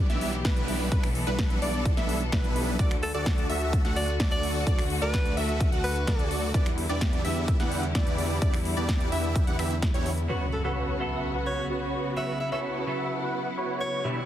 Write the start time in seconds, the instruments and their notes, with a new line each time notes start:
Already playing: string section E3 B3 G4
0.10 detuned saw bass B1, supersaw synth G3 B3 D4 E4 E5, digital synth lead E5, snare, closed hi-hat
0.21 open hi-hat
0.33 closed hi-hat
0.45 detuned saw bass B1, supersaw synth G3 B3 D4 E4 B4, digital synth lead B4, kick, snare, closed hi-hat
0.57 closed hi-hat
0.68 open hi-hat
0.92 detuned saw bass B1, supersaw synth G3 B3 D4 E4 B4, string section A4, digital synth lead B4, kick, closed hi-hat
1.03 finger snap, open hi-hat
1.15 open hi-hat
1.27 detuned saw bass B1, supersaw synth G3 B3 D4 E4 B4, digital synth lead B4, closed hi-hat
1.39 kick, snare, closed hi-hat
1.50 closed hi-hat
1.62 detuned saw bass B1, supersaw synth G3 B3 D4 E4 D5, digital synth lead D5, open hi-hat
1.74 closed hi-hat
1.85 kick, closed hi-hat
1.97 detuned saw bass B1, supersaw synth G3 B3 D4 E4 E5, digital synth lead E5, snare, closed hi-hat
2.09 open hi-hat
2.21 closed hi-hat
2.32 detuned saw bass B1, supersaw synth G3 B3 D4 E4 B4, digital synth lead B4, kick, snare, closed hi-hat
2.44 closed hi-hat
2.56 open hi-hat
2.79 detuned saw bass D2, string section D3 A3 F#4, supersaw synth F#4 A4 D5, digital synth lead D5, kick, closed hi-hat
2.91 finger snap, closed hi-hat
3.03 alto saxophone A4, open hi-hat
3.14 detuned saw bass D2, supersaw synth F#4 A4 D5, alto saxophone A4, digital synth lead D5, closed hi-hat
3.26 kick, snare, closed hi-hat
3.38 closed hi-hat
3.50 detuned saw bass D2, supersaw synth F#4 A4 E5, digital synth lead E5, open hi-hat
3.61 closed hi-hat
3.73 kick, closed hi-hat
3.85 detuned saw bass D2, supersaw synth F#4 A4 F#5, digital synth lead F#5, snare, closed hi-hat
3.96 alto saxophone D5, open hi-hat
4.08 closed hi-hat
4.20 detuned saw bass D2, supersaw synth F#4 A4 D5, digital synth lead D5, kick, snare, closed hi-hat
4.32 alto saxophone D5, closed hi-hat
4.43 open hi-hat
4.67 detuned saw bass D2, supersaw synth F#4 A4 D5, digital synth lead D5, kick, closed hi-hat
4.79 finger snap, open hi-hat
4.90 open hi-hat
5.02 detuned saw bass D2, supersaw synth F#4 A4 D5, alto saxophone B4, digital synth lead D5, closed hi-hat
5.14 kick, snare, closed hi-hat
5.25 closed hi-hat
5.37 detuned saw bass D2, supersaw synth F#4 A4 E5, digital synth lead E5, open hi-hat
5.49 closed hi-hat
5.61 kick, closed hi-hat
5.72 detuned saw bass D2, supersaw synth F#4 A4 F#5, digital synth lead F#5, closed hi-hat
5.84 alto saxophone B4, open hi-hat
5.96 closed hi-hat
6.07 detuned saw bass D2, supersaw synth F#4 A4 D5, digital synth lead D5, kick, snare, closed hi-hat
6.19 closed hi-hat
6.31 open hi-hat
6.54 detuned saw bass E2, string section D3 G3 E4, supersaw synth B3 D4 E4 G4 D5, digital synth lead D5, kick, closed hi-hat
6.66 finger snap, closed hi-hat
6.78 open hi-hat
6.89 detuned saw bass E2, supersaw synth B3 D4 E4 G4 D5, digital synth lead D5, closed hi-hat
7.01 kick, snare, closed hi-hat
7.13 closed hi-hat
7.25 detuned saw bass E2, supersaw synth B3 D4 E4 G4 E5, digital synth lead E5, open hi-hat
7.36 closed hi-hat
7.48 kick, closed hi-hat
7.60 detuned saw bass E2, supersaw synth B3 D4 E4 G4 F#5, digital synth lead F#5, snare, closed hi-hat
7.72 open hi-hat
7.83 closed hi-hat
7.95 detuned saw bass E2, supersaw synth B3 D4 E4 G4 D5, digital synth lead D5, kick, snare, closed hi-hat
8.07 closed hi-hat
8.18 open hi-hat
8.42 detuned saw bass E2, supersaw synth B3 D4 E4 G4 D5, digital synth lead D5, kick, closed hi-hat
8.54 finger snap, open hi-hat
8.65 open hi-hat
8.77 detuned saw bass E2, supersaw synth B3 D4 E4 G4 D5, digital synth lead D5, closed hi-hat
8.89 kick, snare, closed hi-hat
9.00 closed hi-hat
9.12 detuned saw bass E2, supersaw synth B3 D4 E4 G4 E5, digital synth lead E5, open hi-hat
9.24 closed hi-hat
9.36 kick, closed hi-hat
9.47 detuned saw bass E2, supersaw synth B3 D4 E4 G4 F#5, digital synth lead F#5, closed hi-hat
9.59 detuned saw bass E2, supersaw synth B3 D4 E4 G4 E5, digital synth lead E5, finger snap, open hi-hat
9.71 closed hi-hat
9.82 kick, snare, closed hi-hat
9.94 detuned saw bass E2, supersaw synth B3 D4 E4 G4 C#5, digital synth lead C#5, closed hi-hat
10.06 open hi-hat
10.18 closed hi-hat
10.29 clean electric guitar C#3 F#3 B3 F#4, string section C#3 B3 F#4, supersaw synth F#4 B4 C#5, impact
10.53 alto saxophone A4
10.64 clean electric guitar C#3 F#3 B3 A4, supersaw synth F#4 B4 C#5, alto saxophone A4
10.98 clean electric guitar C#3 F#3 B3 A4, supersaw synth F#4 B4 E5
11.35 supersaw synth F#4 B4 F#5
11.46 alto saxophone C#5
11.70 supersaw synth F#4 B4 C#5
12.16 clean electric guitar C#3 F#3 B3 F#4, string section E4, supersaw synth F#4 B4 C#5, alto saxophone E5
12.40 alto saxophone E5
12.51 clean electric guitar C#3 F#3 B3 A4, supersaw synth F#4 B4 C#5, alto saxophone E5
12.86 clean electric guitar C#3 F#3 B3 A4, supersaw synth F#4 B4 E5
13.22 supersaw synth F#4 B4 F#5
13.57 supersaw synth F#4 B4 C#5
13.81 alto saxophone C#5
14.04 supersaw synth B2 D4 E4 G4 B4 E5, string section B2 E3 B3 G4, clean electric guitar D3 G3 B3 E4